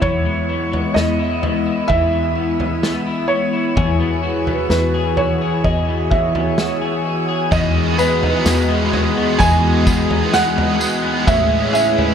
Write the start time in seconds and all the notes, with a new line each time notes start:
Already playing: B2 F#3 B3 E4
0.02 E2 E3 G#3 E4 C#5, kick, floor tom
0.25 G#3
0.49 B3
0.72 G#3, floor tom
0.94 E2 B3 D#5, snare
1.19 E4
1.43 B3, floor tom
1.66 E4
1.88 E2 E3 E4 E5, kick, floor tom
2.12 G#3
2.36 B3
2.59 G#3, floor tom
2.83 B3, snare
3.07 E4
3.28 B3 C#5
3.53 E4
3.76 E2 E3 F#4 G#4 B4, kick, floor tom
4.00 B3
4.23 F#4
4.47 B3, floor tom
4.70 E2 F#4 B4, snare
4.94 G#4
5.17 F#4 C#5, floor tom
5.41 G#4
5.64 E2 E3 G#4 C#5 D#5, kick
5.88 B3
6.10 F#4 E5, kick
6.35 B3, floor tom
6.58 F#4, snare
6.81 G#4
7.05 F#4
7.29 G#4
7.51 E2 B2 D#3 E3 G#3 B3 F#4 G#4 D#5, kick, floor tom, tambourine
7.75 G#3
7.98 G#3 B3 G#4 B4, tambourine
8.03 D#3
8.22 D#4, floor tom
8.45 E2 B2 D#3 G#3 B3 G#4, snare, tambourine
8.68 B3
8.92 G#3 B3 G#4, floor tom
8.96 D#3
9.16 B3
9.39 E2 D#3 E3 G#3 B3 G#5, kick, floor tom, tambourine
9.43 G#4
9.63 G#3
9.85 G#3 B3 G#4, kick, tambourine
9.90 D#3
10.09 D#4, floor tom
10.32 E2 B2 D#3 G#3 B3 G#4 F#5, snare, tambourine
10.56 B3, floor tom
10.79 G#3 B3 G#4, tambourine
10.84 D#3
11.03 B3
11.26 A1 A2 E3 G#3 C#4 E4 G#4 B4 C#5 E5, kick, floor tom, tambourine
11.50 G#3
11.73 C#4 G#4 E5, tambourine
11.77 G#3
11.97 E4, floor tom